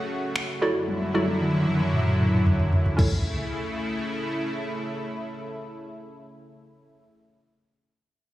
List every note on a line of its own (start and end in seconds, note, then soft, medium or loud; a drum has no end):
0.00 0.60 C#3 medium
0.00 0.60 A3 medium
0.00 0.60 F#4 medium
0.36 finger snap loud
0.62 2.96 F#2 medium
0.62 2.96 D3 medium
0.62 1.04 F#3 medium
0.62 2.96 F#3 medium
0.62 1.04 E4 medium
0.62 2.96 E4 loud
0.62 1.04 F#4 medium
0.62 1.04 A4 medium
0.62 1.04 D5 loud
0.88 high tom medium
1.02 high tom soft
1.14 1.66 F#3 medium
1.14 1.66 E4 medium
1.14 1.66 F#4 medium
1.14 1.66 A4 medium
1.14 1.66 D5 loud
1.14 high tom medium
1.28 high tom medium
1.41 mid tom medium
1.54 mid tom medium
1.67 mid tom medium
1.80 mid tom medium
1.94 mid tom medium
2.07 mid tom medium
2.20 mid tom medium
2.33 mid tom medium
2.46 floor tom medium
2.59 floor tom medium
2.73 floor tom medium
2.86 floor tom medium
2.97 7.04 C#3 medium
2.97 7.04 A3 medium
2.97 7.02 C#4 medium
2.97 7.03 E4 medium
2.97 7.04 E4 medium
2.97 7.04 A4 medium
2.97 kick medium
2.97 crash medium
3.01 7.06 C#5 medium